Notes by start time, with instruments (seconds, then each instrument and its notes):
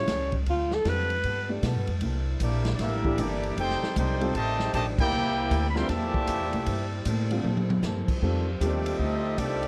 Already playing: alto saxophone C#5
0.07 upright bass C#2, steel-string acoustic guitar A2 G3 C#4 F4, kick, snare, hi-hat pedal, ride
0.32 kick, ride
0.46 upright bass D2, steel-string acoustic guitar D3 A3 C4 F4, alto saxophone F4, kick, ride
0.71 alto saxophone A4, snare
0.85 upright bass F2, steel-string acoustic guitar D3 A3 C4 F4, grand piano G3 C4 F4 A4, kick, snare, hi-hat pedal, ride
0.89 alto saxophone B4
1.10 ride
1.23 upright bass G2, steel-string acoustic guitar G3 B3 F4 A4, kick, ride
1.49 grand piano A3 D4 G4 D5
1.63 upright bass B2, steel-string acoustic guitar G3 B3 F4 A4, kick, snare, hi-hat pedal, ride
1.76 upright bass G2
1.87 upright bass F2, ride
2.01 upright bass C2, steel-string acoustic guitar C3 A#3 E4 A4, saxophone section D3 A#3 C4 E4, kick, ride
2.40 upright bass A#1, steel-string acoustic guitar C3 A#3 E4 A4, trombone section G3 A#3 D4, trumpet section A#3 E4 G4 D5, kick, hi-hat pedal, ride
2.65 snare, ride
2.75 upright bass A1, steel-string acoustic guitar C3, trombone section A#3 E4, trumpet section D5, snare, ride
2.80 trombone section G3, steel-string acoustic guitar A#3 E4 A4, trumpet section D4 G4 A#4 E5, kick
3.04 grand piano E3 D4 G4 A4, kick
3.18 upright bass G1, steel-string acoustic guitar C3 A#3 E4 A4, trombone section G3 A#3 D4, trumpet section A#3 E4 G4 D5, kick, hi-hat pedal, ride
3.43 ride
3.56 upright bass F1, steel-string acoustic guitar F2 D#3 A3, saxophone section C3 G3 D#4, trombone section C4 D#4 G4, trumpet section D#4 A4, kick, ride
3.60 steel-string acoustic guitar D4, trumpet section C5 G5
3.71 snare
3.82 muted upright bass stroke, snare
3.95 upright bass C2, steel-string acoustic guitar F2 D#3 A3 D4, trombone section C4 D#4 G4, trumpet section D#4 A4 C5 G5, kick, hi-hat pedal, ride
4.21 grand piano G3 C4 F4 A4, ride
4.34 upright bass A1, steel-string acoustic guitar F2 D#3 A3 D4, trombone section C3 D#3 A3, trumpet section G4 C5 D#5 A5, kick, ride
4.60 snare
4.73 upright bass A#1, steel-string acoustic guitar F2 D#3 A3 D4, trombone section C3 D#3 A3, trumpet section G4 C5 D#5 A5, kick, hi-hat pedal, ride
4.86 upright bass A1
4.98 upright bass F1, trombone section A#3 E4 G4, trumpet section E4 A#4 D5 G5, kick, crash
5.11 upright bass C2, steel-string acoustic guitar C3 A#3 E4 A4, saxophone section G3 E4
5.50 upright bass D2, steel-string acoustic guitar C3 A#3 E4 A4, kick, hi-hat pedal, ride
5.70 trumpet section B5
5.75 grand piano D3 G3 C4 F4, trombone section E3 G3 C4, trumpet section A#4 E5 G5 C6, snare
5.89 upright bass E2, trombone section A#2 E3 A3, steel-string acoustic guitar C3 A#3 E4 A4, trumpet section G4 D5 E5 A5, kick, snare, ride
6.14 kick
6.27 upright bass F2, steel-string acoustic guitar C3 A#3 E4 A4, kick, hi-hat pedal, ride
6.41 upright bass E2
6.53 upright bass C2, ride
6.66 upright bass G2, steel-string acoustic guitar C3 A#3 E4 A4, kick, ride
7.05 upright bass A2, steel-string acoustic guitar C3 A#3 E4 A4, kick, hi-hat pedal, ride
7.30 grand piano D3 G3 C4 F4, ride
7.43 upright bass A#2, steel-string acoustic guitar C3 A#3 E4 A4, high tom
7.57 high tom
7.70 high tom
7.82 upright bass G2, steel-string acoustic guitar C3 A#3 E4 A4, snare, hi-hat pedal
8.08 muted upright bass stroke, kick, crash
8.21 steel-string acoustic guitar F2 D#3 A3 D4, upright bass F2, saxophone section F3 F4 G4, grand piano G3 C4 F4 A4, kick
8.60 upright bass D#2, steel-string acoustic guitar F2 D#3 A3 D4, trombone section D#3 A3 D4, grand piano G3 C4 F4 G4, trumpet section C4 G4 A4 D5, kick, hi-hat pedal, ride
8.86 ride
8.98 upright bass D2, steel-string acoustic guitar F2 D#3 A3 D4, trombone section A3 C4 D#4, trumpet section C4 G4 A4 D#5, kick
9.37 upright bass C2, steel-string acoustic guitar F2 D#3 A3 D4, trombone section D#3 A3 D4, trumpet section C4 G4 A4 D5, kick, hi-hat pedal, ride
9.63 ride